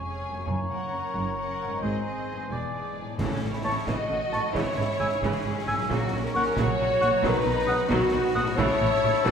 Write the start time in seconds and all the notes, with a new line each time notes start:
Already playing: F1 F2 G#3 G#4 C#5 G#5
0.03 C#4 G#4 G#5
0.27 F#2 G#3 C#4
0.34 A#3
0.39 F#4
0.43 C#5
0.47 F#1 F#2 C#5 A#5
0.70 C#4 A#4 F#5
0.93 A#3 C#4
1.14 F#1 F#2
1.37 C#4 A#4 F#5
1.60 G#2 A#3 C#4
1.68 G#3
1.72 D#4
1.77 C5
1.81 G#1 G#2 C4 G#4 C5 D#5 G#5
2.04 C4 G#4 D#5
2.29 E2 G#3 C4
2.37 G#3
2.42 D4
2.46 B4
2.50 E1 E2 B3 G#4 D5
2.72 B3 G#4 D5
2.97 G#3 D4
3.02 A2
3.06 A3
3.11 E4
3.15 A2 C#4 A4 C#5, concert bass drum, snare, crash
3.19 A1 C#3 E3 A4
3.42 A1 A2 A3 C#4
3.51 E4 C#5
3.63 A1 A2 E3 A3 E4 C#5 A5 C#6
3.86 A1 A2 C#3 E3 F#4 D#5, concert bass drum, snare
4.09 A1 A2 A3 C#4
4.31 A1 A2 E3 A3 A5 C#6, snare
4.37 G#2
4.42 G#3
4.46 E4
4.51 C#3 E3 E4 C#5
4.55 G#1 G#2, concert bass drum, snare
4.77 G#1 G#2 E3 C#4
5.00 G#1 G#2 C#3 G#3 G#5 E6
5.21 G#1 G#2 C#3 E3 C#4 G#4, concert bass drum, snare
5.45 G#1 G#2 E3 C#4
5.67 G#1 G#2 C#3 G#3 G#5 E6
5.72 A#2
5.77 F#3
5.81 F#4
5.85 F#4 C#5
5.90 A#1 A#2 C#3 F#3 A#3 F#4, concert bass drum, snare
6.12 A#1 A#2 F#3 C#4
6.23 C#4 A#4
6.34 A#1 A#2 C#3 A#3 C#4 A#4 F#5 C#6
6.56 A#1 A#2 C#3 F#3 F#4 C#5, concert bass drum, snare
6.79 A#1 A#2 F#3 C#4
7.00 A#1 A#2 C#3 A#3 F#5 C#6, snare
7.05 B2
7.10 F#3
7.14 D#4
7.19 B2 D#4 B4 D#5
7.23 B1 D#3 F#3 B4, concert bass drum, snare
7.45 B1 B2 D#3 D#4
7.67 B1 B2 D#3 B3 F#5 D#6
7.88 B1 B2 D#3 F#3 B3 F#4, concert bass drum, snare
8.12 B1 B2 D#3 D#4
8.35 B1 B2 D#3 B3 F#5 D#6
8.39 A2
8.43 A3
8.48 E4
8.52 C#5
8.56 A1 A2 C#3 E3 E4 C#5 A5 E6, concert bass drum, snare, crash
8.80 A1 A2 E3 C#4
9.03 A1 A2 C#3 A3
9.23 A1 A2 C#3 E3 F#4 A4 F#5, concert bass drum, snare